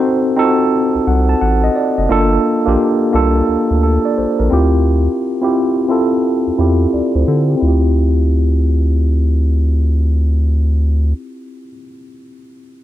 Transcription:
0.00 0.36 C4 medium
0.00 0.37 D#4 medium
0.00 0.45 F#4 medium
0.00 0.39 A4 medium
0.00 0.30 C5 medium
0.36 0.94 C4 medium
0.36 0.95 D#4 medium
0.36 0.46 F4 medium
0.36 0.96 A4 medium
0.45 0.98 F#4 medium
0.95 1.00 C2 soft
1.07 1.35 C2 medium
1.07 1.27 F#5 medium
1.29 1.40 A5 medium
1.41 1.69 A1 medium
1.41 1.62 F#5 medium
1.64 1.75 D#5 medium
1.76 1.96 D5 medium
1.98 2.08 F#1 medium
1.98 2.30 D#5 soft
2.09 2.38 G1 medium
2.09 2.51 A#3 medium
2.09 2.51 D4 medium
2.09 2.51 F4 medium
2.09 2.52 A4 loud
2.66 2.77 A#1 medium
2.66 3.04 A#3 medium
2.66 3.04 D4 medium
2.66 3.05 F4 medium
2.66 3.06 G4 medium
3.13 3.42 C2 medium
3.13 3.70 A#3 medium
3.13 3.71 D4 medium
3.13 3.71 F4 medium
3.13 3.72 A4 medium
3.49 3.57 D2 soft
3.71 3.98 D2 medium
3.83 4.03 A4 medium
4.05 4.16 D5 medium
4.18 4.26 A#1 soft
4.18 4.38 C5 medium
4.39 4.49 A#1 medium
4.39 4.71 A#4 medium
4.50 5.08 D2 medium
4.50 5.19 C4 medium
4.50 5.20 E4 medium
4.50 5.20 F4 medium
4.50 5.21 G4 medium
5.41 5.80 C4 medium
5.41 5.80 E4 medium
5.41 5.81 F4 medium
5.41 5.81 G4 medium
5.88 6.46 C4 medium
5.88 6.46 E4 medium
5.88 6.47 F4 medium
5.88 6.48 A4 medium
6.47 6.52 E2 soft
6.58 6.87 E2 medium
6.58 7.15 C4 medium
6.58 7.16 E4 medium
6.58 7.16 F4 medium
6.58 6.93 G4 medium
6.94 7.02 D2 soft
6.94 7.14 D5 soft
7.15 7.25 D2 medium
7.15 7.26 C5 medium
7.28 7.56 D3 medium
7.28 7.48 A4 soft
7.50 7.67 G4 soft
7.57 11.61 C4 medium
7.57 11.65 E4 medium
7.62 11.13 D2 medium
7.62 11.69 F4 medium
7.68 11.73 G4 medium

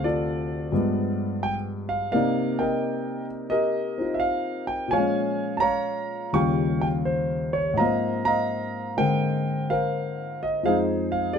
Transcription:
0.00 0.70 D2 soft
0.00 0.72 C3 soft
0.00 0.71 F3 soft
0.00 0.70 C5 medium
0.04 1.40 F4 medium
0.04 0.70 A4 medium
0.04 1.40 D5 medium
0.72 2.13 G2 soft
0.72 2.13 F3 soft
0.72 2.13 G#3 soft
0.72 2.13 B3 soft
1.43 1.54 G5 medium
1.89 2.11 F5 medium
2.12 4.92 C3 medium
2.12 4.92 A#3 soft
2.12 3.97 D#4 medium
2.12 2.59 A#4 medium
2.12 3.48 D5 medium
2.12 2.60 F5 medium
2.59 3.50 A#4 medium
2.59 3.48 D#5 medium
2.59 3.24 G5 medium
3.50 4.88 G4 medium
3.50 4.88 A#4 medium
3.50 4.18 D#5 medium
3.98 4.91 C4 soft
3.98 4.92 D#4 soft
3.98 4.93 F4 soft
4.14 4.20 E5 medium
4.20 4.64 F5 medium
4.67 4.92 G5 medium
4.88 6.31 A#2 soft
4.88 5.53 G#5 medium
4.92 6.33 F3 soft
4.92 6.35 G#3 soft
4.92 5.61 C#5 medium
4.92 5.62 F5 medium
4.99 6.37 C#4 medium
5.57 5.62 A5 medium
5.57 6.34 A#5 medium
5.62 6.29 C#5 medium
5.62 6.30 F5 medium
6.33 7.79 D#2 medium
6.33 7.79 C#3 soft
6.33 7.79 G3 soft
6.33 7.79 F4 medium
6.33 7.76 F5 medium
6.33 6.80 G5 medium
6.33 6.79 C#6 medium
6.81 6.87 G5 medium
7.05 7.56 C5 medium
7.53 7.76 C#5 medium
7.74 10.61 G#2 soft
7.78 10.63 F3 soft
7.78 10.65 A#3 soft
7.78 8.26 D#5 medium
7.78 8.26 F5 medium
7.78 8.23 A#5 medium
7.84 8.97 C4 soft
8.25 9.66 D#5 medium
8.25 9.66 F5 medium
8.25 8.94 A#5 loud
8.97 10.64 D3 soft
8.97 10.63 G#3 soft
8.97 10.63 C4 soft
8.97 9.69 A#4 medium
8.97 9.69 C5 medium
8.97 9.72 G5 medium
9.70 10.60 A#4 medium
9.70 10.60 C5 medium
9.70 10.43 F5 medium
10.43 10.63 D#5 medium
10.63 11.39 F2 soft
10.63 11.39 F3 soft
10.63 11.39 G#3 soft
10.63 11.34 G#4 medium
10.63 11.39 C5 medium
10.63 10.76 F5 medium
10.68 11.39 D#4 medium
11.12 11.32 F5 medium
11.33 11.39 G#4 medium
11.33 11.39 D5 medium

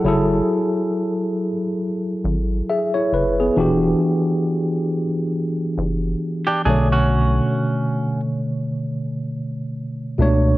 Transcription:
0.04 0.41 F#1 loud
0.04 1.49 F#3 medium
0.04 1.50 E4 medium
0.04 1.50 G#4 medium
0.08 1.51 A4 medium
2.24 2.62 G#1 medium
2.70 2.94 G#4 soft
2.70 2.93 E5 medium
2.94 3.12 E4 soft
2.94 3.11 C#5 medium
3.12 3.50 F#1 medium
3.12 3.37 B4 medium
3.40 3.81 B3 soft
3.40 3.81 G#4 medium
3.57 3.94 E1 loud
3.57 5.02 E3 medium
3.57 5.02 D4 medium
3.57 5.03 F#4 medium
3.57 5.04 G4 medium
5.78 6.15 F#1 loud
6.47 6.64 D4 medium
6.47 6.64 G4 medium
6.65 7.40 B1 medium
6.65 8.11 B2 medium
6.65 8.12 D3 medium
6.65 8.12 A3 medium
6.65 6.90 D4 medium
6.65 6.90 G#4 medium
6.69 8.13 C#5 medium
6.92 8.20 C#4 medium
6.92 8.20 F#4 medium
10.18 10.56 C#2 medium
10.18 10.55 B2 medium
10.18 10.56 A3 medium
10.18 10.57 D4 medium
10.18 10.57 C#5 medium

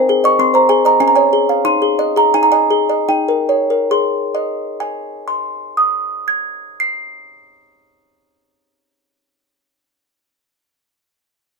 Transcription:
0.00 0.38 C4 medium
0.00 0.19 C5 medium
0.00 0.23 G#5 medium
0.09 0.33 G#4 medium
0.24 0.48 D#5 medium
0.24 0.40 C#6 medium
0.39 0.99 C4 medium
0.39 0.55 C6 medium
0.54 0.79 C5 soft
0.54 0.70 A#5 medium
0.69 0.94 G#4 medium
0.69 0.85 G#5 medium
0.85 1.01 D#5 medium
0.85 1.01 A#5 loud
1.00 1.63 C#4 medium
1.00 1.08 G#5 loud
1.08 1.16 A#5 medium
1.16 1.42 C#5 medium
1.16 1.63 G#5 medium
1.33 1.59 G#4 medium
1.49 1.65 F5 medium
1.65 2.33 D#4 medium
1.65 2.14 C6 loud
1.82 2.09 G#4 soft
1.99 2.27 D#5 medium
2.16 2.45 G#4 medium
2.16 2.34 A#5 medium
2.34 3.06 D#4 medium
2.34 2.43 G#5 medium
2.43 2.51 A#5 medium
2.52 2.82 D#5 medium
2.52 3.06 G#5 loud
2.71 3.01 G#4 medium
2.90 3.09 D#5 medium
3.09 3.88 D#4 medium
3.09 3.88 G5 medium
3.28 3.61 A#4 soft
3.49 3.82 C#5 soft
3.70 3.91 A#4 soft
3.91 7.50 G#4 medium
3.91 5.26 C6 medium
4.35 7.94 D#5 medium
4.80 8.39 G#5 medium
5.28 8.87 C6 medium
5.77 9.36 D#6 soft
6.28 9.87 G#6 soft
6.80 10.39 C7 soft

